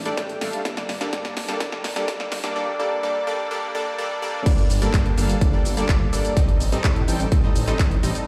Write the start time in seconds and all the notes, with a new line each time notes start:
Already playing: A1
0.06 G3 A3 D4 A4 D5, closed hi-hat
0.17 A1 G3 A3 D4 A4 G5, kick, snare, closed hi-hat
0.29 closed hi-hat
0.41 A1 G3 A3 D4 A4 F5, snare, open hi-hat
0.53 closed hi-hat
0.65 G1 A#3 D4 A4 D5, kick, snare, closed hi-hat
0.77 snare, closed hi-hat
0.89 G1, snare, open hi-hat
1.01 G3 A#3 D4 A4 D5, snare, closed hi-hat
1.13 G2 G3 A#3 D4 A4 D5, kick, snare, closed hi-hat
1.25 snare, closed hi-hat
1.37 G1, snare, open hi-hat
1.48 G3 A#3 D4 A4 D5, snare, closed hi-hat
1.60 G1 A#3 D4, kick, snare, closed hi-hat
1.72 snare
1.84 G1, snare, open hi-hat
1.96 G3 A#3 D4 A4 D5, snare, closed hi-hat
2.08 G1 A#3 D4 A4 D5, kick, snare, closed hi-hat
2.20 snare
2.32 G1, snare, open hi-hat
2.44 G3 A#3 D4 A4 D5, snare, closed hi-hat
2.56 G3 A#3 D4 A4 D5
2.79 G3 A#3 D4 A4 D5
3.03 G3 A#3 D4 A4 D5
3.27 G3 A#3 D4 A4 D5
3.51 G3 A#3 D4 A4 D5
3.75 G3 A#3 D4 A4 D5
3.98 G3 A#3 D4 A4 D5
4.22 G3 A#3 D4 A4 D5
4.46 G1 G3 A#3 D4 D5, kick, closed hi-hat, crash, cabasa
4.58 closed hi-hat
4.70 G1, open hi-hat, cabasa
4.82 G3 A#3 D4 A4 D5, closed hi-hat, cabasa
4.94 G2 G3 A#3 D4 A4 G5, kick, clap, closed hi-hat, cabasa
5.06 closed hi-hat
5.18 G1 G3 A#3 D4 A4 F5, open hi-hat, cabasa
5.29 closed hi-hat, cabasa
5.41 G1 G3 A#3 D4 A4 D5, kick, closed hi-hat, cabasa
5.53 G3 A#3 D4 A4 D5
5.65 G1, open hi-hat, cabasa
5.77 G3 A#3 D4 A4 D5, closed hi-hat, cabasa
5.89 G1, kick, clap, closed hi-hat, cabasa
6.13 G1 G3 A#3 D4 A4 D5, open hi-hat, cabasa
6.25 closed hi-hat, cabasa
6.37 A1 G3 C4 D#4 A4 D#5, kick, closed hi-hat, cabasa
6.49 closed hi-hat
6.60 A1, open hi-hat, cabasa
6.72 G3 C4 D#4 A4 D#5, closed hi-hat, cabasa
6.84 A2 G3 C4 D#4 A4 A5, kick, clap, closed hi-hat, cabasa
6.96 closed hi-hat
7.08 A1 G3 C4 D#4 A4 G5, open hi-hat, cabasa
7.20 closed hi-hat, cabasa
7.32 A1 G3 C4 D#4 A4 D#5, kick, closed hi-hat, cabasa
7.44 G3 C4 D#4 A4 D#5
7.56 A1, open hi-hat, cabasa
7.67 G3 C4 D#4 A4 D#5, clap, closed hi-hat, cabasa
7.79 A1 G3 C4, kick, clap, closed hi-hat, cabasa
7.91 closed hi-hat
8.03 A1 G3 C4 D#4 A4 D#5, open hi-hat, cabasa
8.15 closed hi-hat, cabasa